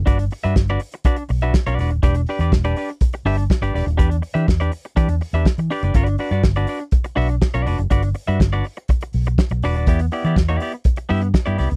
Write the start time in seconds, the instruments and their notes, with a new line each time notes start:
0.06 fingered electric bass G1, clean electric guitar D4 F#4 B4 D5, kick, closed hi-hat
0.19 muted clean electric guitar stroke, closed hi-hat
0.31 muted clean electric guitar stroke, open hi-hat
0.44 fingered electric bass G2, clean electric guitar D4 F#4 B4 E5, closed hi-hat
0.56 fingered electric bass G1, kick, snare
0.68 clean electric guitar D4 F#4 B4 D5, closed hi-hat
0.80 muted clean electric guitar stroke, open hi-hat
0.92 muted clean electric guitar stroke, closed hi-hat
1.04 clean electric guitar D4 F#4 B4 D5, kick, closed hi-hat
1.16 muted clean electric guitar stroke, closed hi-hat
1.29 fingered electric bass B1, muted clean electric guitar stroke, open hi-hat
1.41 clean electric guitar D4 F#4 B4 E5, closed hi-hat
1.54 kick, snare
1.66 fingered electric bass B1, clean electric guitar D4 F#4 B4 D5, closed hi-hat
1.79 fingered electric bass E1, clean electric guitar D4 F#4 B4 D5, snare, open hi-hat
1.90 fingered electric bass D#1, muted clean electric guitar stroke, closed hi-hat
2.03 fingered electric bass E1, clean electric guitar D4 G4 B4 D5, kick, closed hi-hat
2.15 muted clean electric guitar stroke, closed hi-hat
2.26 clean electric guitar D4 G4 B4 D5, open hi-hat
2.39 fingered electric bass E2, clean electric guitar D4 G4 B4 D5, closed hi-hat
2.52 fingered electric bass E1, muted clean electric guitar stroke, kick, snare
2.64 clean electric guitar D4 G4 B4 D5, closed hi-hat
2.76 clean electric guitar D4 G4 B4 D5, open hi-hat
2.89 muted clean electric guitar stroke, closed hi-hat
3.01 kick, closed hi-hat
3.13 muted clean electric guitar stroke, closed hi-hat
3.25 fingered electric bass G1, clean electric guitar D4 G4 B4 E5, open hi-hat
3.38 muted clean electric guitar stroke, closed hi-hat
3.50 muted clean electric guitar stroke, kick, snare
3.61 fingered electric bass G1, clean electric guitar D4 G4 B4 D5, closed hi-hat
3.74 fingered electric bass E1, clean electric guitar D4 G4 B4 D5, snare, open hi-hat
3.86 fingered electric bass D#1, muted clean electric guitar stroke, closed hi-hat
3.97 fingered electric bass E2, clean electric guitar D4 G4 B4 D5, kick, closed hi-hat
4.10 muted clean electric guitar stroke, closed hi-hat
4.22 muted clean electric guitar stroke, open hi-hat
4.34 fingered electric bass E3, clean electric guitar D4 G4 B4 E5, closed hi-hat
4.47 fingered electric bass E2, muted clean electric guitar stroke, kick, snare
4.60 clean electric guitar D4 G4 B4 D5, closed hi-hat
4.72 muted clean electric guitar stroke, open hi-hat
4.85 muted clean electric guitar stroke, closed hi-hat
4.96 fingered electric bass E3, clean electric guitar D4 G4 B4 D5, kick, closed hi-hat
5.08 fingered electric bass E2, muted clean electric guitar stroke, closed hi-hat
5.21 muted clean electric guitar stroke, open hi-hat
5.33 fingered electric bass E2, clean electric guitar D4 G4 B4 E5, closed hi-hat
5.45 kick, snare
5.58 fingered electric bass E3, muted clean electric guitar stroke, closed hi-hat
5.71 clean electric guitar D4 G4 B4 D5, open hi-hat
5.83 fingered electric bass F#1, clean electric guitar D4 G4 B4 D5, closed hi-hat
5.94 fingered electric bass G1, clean electric guitar D4 F#4 B4 D5, kick, closed hi-hat
6.06 muted clean electric guitar stroke, closed hi-hat
6.18 clean electric guitar D4 F#4 B4 D5, open hi-hat
6.31 fingered electric bass G2, clean electric guitar D4 F#4 B4 D5, closed hi-hat
6.43 fingered electric bass G1, kick, snare
6.55 clean electric guitar D4 F#4 B4 D5, closed hi-hat
6.67 clean electric guitar D4 F#4 B4 D5, open hi-hat
6.79 muted clean electric guitar stroke, closed hi-hat
6.91 kick, closed hi-hat
7.04 muted clean electric guitar stroke, closed hi-hat
7.16 fingered electric bass B1, clean electric guitar D4 F#4 B4 E5, open hi-hat
7.29 muted clean electric guitar stroke, closed hi-hat
7.42 muted clean electric guitar stroke, kick, snare
7.54 fingered electric bass B1, clean electric guitar D4 F#4 B4 D5, closed hi-hat
7.66 fingered electric bass F1, clean electric guitar D4 F#4 B4 D5, open hi-hat
7.78 fingered electric bass F#1, muted clean electric guitar stroke, closed hi-hat
7.90 fingered electric bass G1, clean electric guitar D4 F#4 B4 D5, kick, closed hi-hat
8.03 muted clean electric guitar stroke, closed hi-hat
8.14 muted clean electric guitar stroke, open hi-hat
8.27 fingered electric bass G2, clean electric guitar D4 F#4 B4 E5, closed hi-hat
8.40 fingered electric bass G1, kick, snare
8.52 clean electric guitar D4 F#4 B4 D5, closed hi-hat
8.64 muted clean electric guitar stroke, open hi-hat
8.77 muted clean electric guitar stroke, closed hi-hat
8.88 muted clean electric guitar stroke, kick, closed hi-hat
9.01 muted clean electric guitar stroke, closed hi-hat
9.13 fingered electric bass B1, open hi-hat
9.26 muted clean electric guitar stroke, closed hi-hat
9.38 muted clean electric guitar stroke, kick, snare
9.50 fingered electric bass B1, muted clean electric guitar stroke, closed hi-hat
9.62 fingered electric bass E1, clean electric guitar D4 F#4 B4 D5, snare, open hi-hat
9.75 fingered electric bass D#1, clean electric guitar D4 F#4 B4 D5, closed hi-hat
9.87 fingered electric bass E2, clean electric guitar B3 E4 G4 D5, kick, closed hi-hat
9.99 muted clean electric guitar stroke, closed hi-hat
10.12 clean electric guitar B3 E4 G4 D5, open hi-hat
10.24 fingered electric bass E3, clean electric guitar B3 E4 G4 D5, closed hi-hat
10.36 fingered electric bass E2, kick, snare
10.48 clean electric guitar B3 E4 G4 D5, closed hi-hat
10.60 clean electric guitar B3 E4 G4 D5, open hi-hat
10.72 muted clean electric guitar stroke, closed hi-hat
10.84 kick, closed hi-hat
10.96 muted clean electric guitar stroke, closed hi-hat
11.09 fingered electric bass G2, clean electric guitar B3 E4 G4 E5, open hi-hat
11.21 muted clean electric guitar stroke, closed hi-hat
11.34 muted clean electric guitar stroke, kick, snare
11.46 fingered electric bass G2, clean electric guitar B3 E4 G4 D5, closed hi-hat
11.57 fingered electric bass C2, clean electric guitar B3 E4 G4 D5, snare, open hi-hat
11.70 fingered electric bass C#2, muted clean electric guitar stroke, closed hi-hat